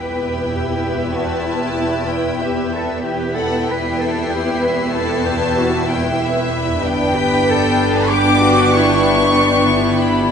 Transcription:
Already playing: E1 E2 B3 E4 G4 B4 E5 G5
0.51 G4
1.14 F#4 A5
1.47 E4
2.08 G5
2.40 G4 E5
2.73 A4
3.02 E1 E2 B3 E4 G4 B4 E5 B6
3.34 A4 F#5
3.65 B4 G5 C7
3.98 A4
4.31 G4
4.62 B4
4.93 A4 A5
5.26 G4
5.57 F#4
5.87 E4 G5
6.21 E5
6.83 G1 B3 D4 G4 B4 D5 G5 B5
7.15 B4
7.45 A4 C6
8.10 G4 D6
8.41 F#4
8.72 E4 C#6
9.35 D4
9.67 E4
9.98 B5

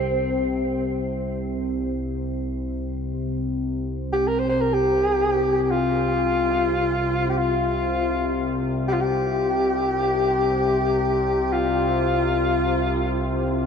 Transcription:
Already playing: C2 C3 C4
3.14 C2 C3
4.13 G4
4.27 A#4
4.39 C5
4.49 C5
4.61 A#4
4.73 G4
5.63 G4
5.71 F4
7.29 G4
7.38 F4
8.88 G4
8.93 F4
9.01 G4
11.53 F4

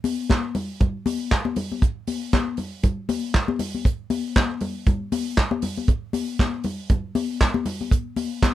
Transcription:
0.04 open hi-hat, muted conga, high conga
0.30 kick, snare, clap, closed hi-hat, muted conga, high conga
0.55 open hi-hat, muted conga, low conga
0.80 kick, closed hi-hat, muted conga, low conga
1.06 open hi-hat, muted conga, high conga
1.31 kick, snare, clap, closed hi-hat, muted conga
1.45 high conga
1.56 open hi-hat, muted conga, low conga
1.72 high conga
1.82 kick, closed hi-hat, muted conga
2.07 open hi-hat, high conga
2.33 kick, snare, clap, closed hi-hat, muted conga, high conga
2.57 open hi-hat, muted conga, low conga
2.83 kick, closed hi-hat, low conga
3.09 open hi-hat, muted conga, high conga
3.34 kick, snare, clap, closed hi-hat, muted conga
3.48 high conga
3.59 open hi-hat, muted conga, low conga
3.75 high conga
3.85 kick, closed hi-hat, muted conga
4.10 open hi-hat, muted conga, high conga
4.36 kick, snare, clap, closed hi-hat, muted conga, high conga
4.60 open hi-hat, low conga
4.87 kick, closed hi-hat, low conga
5.12 open hi-hat, muted conga, high conga
5.37 kick, snare, clap, closed hi-hat, muted conga
5.51 high conga
5.62 open hi-hat, muted conga, low conga
5.77 high conga
5.88 kick, closed hi-hat, muted conga
6.13 open hi-hat, muted conga, high conga
6.39 kick, snare, clap, closed hi-hat, high conga
6.64 open hi-hat, muted conga, low conga
6.89 kick, closed hi-hat, muted conga, low conga
7.15 open hi-hat, muted conga, high conga
7.41 kick, snare, clap, closed hi-hat
7.54 high conga
7.66 open hi-hat, muted conga, low conga
7.81 high conga
7.91 kick, closed hi-hat
8.16 open hi-hat, muted conga, high conga
8.42 kick, snare, clap, closed hi-hat, muted conga, high conga

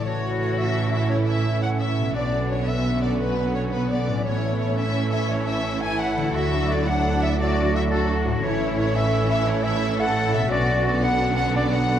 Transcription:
Already playing: A2 C#3 A3 E4
0.00 E4 F#4 A4
0.04 A1 E3 A3 C#4 C#5
0.39 C#5
0.57 E5
0.91 E5
1.09 E4 C#5
1.26 E5
1.61 C#4 F#5
1.79 E5
1.98 B2
2.02 B3
2.12 B1 D3 F#3 B3 C#4 D4 F#4 D5
2.16 B3
2.49 C#5
2.67 B3 E5
3.02 D5
3.20 B4
3.55 C#5
3.72 B4
3.90 D5
4.07 A2
4.12 C#4
4.16 E4
4.21 A1 A4 C#5
4.26 E3 A3 C#4 E4
4.60 C#5
4.77 C#4 E5
5.10 E5
5.30 C#5
5.47 E5
5.82 E4 G#5
5.99 F#5
6.17 D3
6.21 D4
6.26 F#4
6.30 A4
6.35 D2 F#3 D4 F#4 E5
6.69 D5
6.86 D4 F#5
7.22 E5
7.39 F#4 D5
7.75 E5
7.90 F#4 A4
8.25 A2
8.30 A3
8.34 E4
8.39 E4 A4 C#5
8.43 A1 E3 A3 C#4 E4 A4
8.79 C#5
8.95 C#4 E5
9.29 E5
9.48 E4 C#5
9.63 E5
9.99 A4 F#5
10.33 B2 E5
10.37 B3
10.46 F#4
10.50 B1 D3 F#3 B3 C#4 D5
10.86 D5
11.03 D4 F#5
11.36 F#5
11.55 D5
11.74 F#5

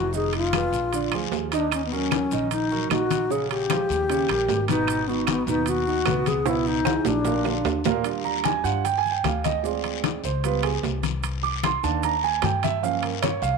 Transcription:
Already playing: F1 F#4
0.13 D#3 D#4 G#4 D#5, high conga, long guiro, maracas
0.33 F4, high conga, high timbale, maracas
0.53 G#3 G#4 B4, high conga, high timbale, low timbale, short guiro, claves, maracas
0.72 A#1, high conga, short guiro, maracas
0.93 D3 D4 D5, high conga, high timbale, long guiro, maracas
1.12 D2 F3 F4 G#4, high conga, high timbale, claves, maracas
1.31 D#2, high conga, low timbale, short guiro, maracas
1.52 D#3 D4 D#4 D#5, high timbale, short guiro, maracas
1.72 C#4, high conga, high timbale, long guiro, claves, maracas
1.85 B3
1.92 F#3 C#4 F#4 A#4, high conga, maracas
2.11 high conga, high timbale, low timbale, short guiro, claves, maracas
2.31 A#1 D#3 D#4 D#5, high conga, short guiro, maracas
2.51 D#4, high conga, high timbale, long guiro, maracas
2.71 F#3 F#4 A#4, high conga, maracas
2.90 A#1 D#3 D#4 F#4 D#5, high conga, high timbale, low timbale, short guiro, claves, maracas
3.10 high conga, high timbale, short guiro, maracas
3.30 C#3 C#4 G#4 C#5, high conga, long guiro, maracas
3.50 G4, high conga, high timbale, maracas
3.70 F3 G#3 F4, high conga, high timbale, low timbale, short guiro, claves, maracas
3.89 D#2, high conga, short guiro, maracas
4.09 C#3 C#4 C#5, high conga, high timbale, long guiro, maracas
4.29 A#1 G3 G4 A#4, high conga, high timbale, claves, maracas
4.48 G#1, high conga, low timbale, short guiro, maracas
4.68 B2 B3 D#4 B4, high conga, high timbale, short guiro, maracas
4.87 high conga, high timbale, long guiro, claves, maracas
5.08 D#3 B3 D#4 F#4, high conga, maracas
5.27 B3, high conga, high timbale, low timbale, short guiro, claves, maracas
5.47 D#2 B2 B3 D#4 B4, high conga, short guiro, maracas
5.66 F#4, high conga, high timbale, long guiro, maracas
5.87 D#3 D#4 F#4, high conga, maracas
6.06 C#2 B2 B3 B4, high conga, high timbale, low timbale, short guiro, claves, maracas
6.26 G#4, high conga, high timbale, short guiro, maracas
6.46 B2 B3 E4 B4, high conga, high timbale, long guiro, maracas
6.66 D#4, high conga, maracas
6.85 E3 E4 G#4, high conga, high timbale, short guiro, claves, maracas
7.05 A#1 D4, high conga, low timbale, short guiro, maracas
7.25 A#2 A#3 A#4, high conga, low timbale, long guiro, maracas
7.45 D3 D4 F4, high conga, low timbale, claves, maracas
7.64 D#2, high conga, low timbale, short guiro, maracas
7.84 A#2 A#3 A#4, high conga, low timbale, short guiro, maracas
8.04 G3 D4 F4, high conga, high timbale, long guiro, maracas
8.25 A#5, high conga, maracas
8.44 G#5, high conga, high timbale, low timbale, short guiro, maracas
8.64 G2 G3 D4 F4 F#5, high conga, short guiro, maracas
8.84 G5, high conga, high timbale, long guiro, maracas
8.98 G#5
9.05 high conga, maracas
9.11 G5
9.24 D2 F5, high conga, high timbale, low timbale, short guiro, maracas
9.44 D#5, high conga, high timbale, short guiro, maracas
9.63 G#3 C4 F4 D5, high conga, long guiro, maracas
9.84 high conga, high timbale, maracas
10.04 high conga, high timbale, low timbale, short guiro, maracas
10.23 C#2 C5, high conga, short guiro, maracas
10.44 G3 B3 F4 B4, high conga, high timbale, long guiro, maracas
10.63 G#4, high conga, high timbale, maracas
10.83 C2, high conga, low timbale, short guiro, maracas
11.03 high conga, high timbale, short guiro, maracas
11.23 high conga, high timbale, long guiro, maracas
11.43 D6, high conga, maracas
11.63 C6, high conga, high timbale, low timbale, short guiro, maracas
11.83 D#2 D#3 A#3 D4 A5, high conga, short guiro, maracas
12.03 A#5, high conga, high timbale, long guiro, maracas
12.23 G#5, high conga, maracas
12.42 G2 G5, high conga, high timbale, low timbale, short guiro, maracas
12.63 E5, high conga, high timbale, short guiro, maracas
12.82 F3 A#3 C#4 F5, high conga, long guiro, maracas
13.03 A#4, high conga, high timbale, maracas
13.22 C#5, high conga, high timbale, low timbale, short guiro, maracas
13.42 C2 F5, short guiro, maracas

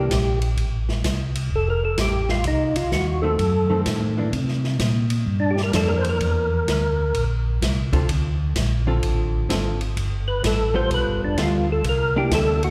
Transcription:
Already playing: G4
0.11 A#1, kick, snare, hi-hat pedal, ride
0.42 ride
0.57 A1, kick, ride
0.89 snare
1.04 C2, kick, snare, hi-hat pedal, ride
1.35 ride
1.51 F1, kick
1.55 A4
1.70 A#4
1.85 A4
1.98 A1 G4, kick, snare, hi-hat pedal, ride
2.29 F4, snare
2.44 C2 D#4, kick, ride
2.75 C2 F4, ride
2.92 D#2 F#4, kick, snare, hi-hat pedal
3.22 D#3 A3 C4 A4
3.39 F#2, kick, ride
3.70 D#3 A3 C4
3.85 A2, kick, snare, hi-hat pedal, ride
4.17 E3 A#3 D4
4.33 C3, kick, ride
4.48 snare
4.64 snare
4.79 A#2, kick, snare, hi-hat pedal, ride
5.10 ride
5.26 G2, kick
5.40 D4
5.51 G4
5.57 snare
5.63 A#4
5.73 F2 E3 A#3 D4 A4, kick, snare, hi-hat pedal, ride
5.88 A#4
5.97 C5
6.04 ride
6.09 A#4
6.20 E2, kick, ride
6.67 D2, kick, snare, hi-hat pedal, ride
7.14 A#1, kick, ride
7.62 C2, kick, snare, hi-hat pedal, ride
7.93 D3 C4 F4 A4, kick, ride
8.09 D2, kick, ride
8.56 A#1, kick, snare, hi-hat pedal, ride
8.87 D3 C4 F4 A4
9.02 A1, kick, ride
9.49 G#1 D3 C4 F4 A4, kick, snare, hi-hat pedal, ride
9.81 ride
9.97 G1, kick, ride
10.28 B4
10.44 A1 A4, kick, snare, hi-hat pedal, ride
10.74 G3 B3 F4 A4 C5
10.90 B1 B4, kick, ride
11.06 G1
11.21 F1 D4
11.38 D2 G3 B3 F4 A4, kick, snare, hi-hat pedal, ride
11.43 F4
11.72 A4
11.84 C2, kick, ride
11.89 A#4
12.16 A#3 D4 E4 G4
12.31 D2 A4, kick, snare, hi-hat pedal, ride
12.63 F#4, ride

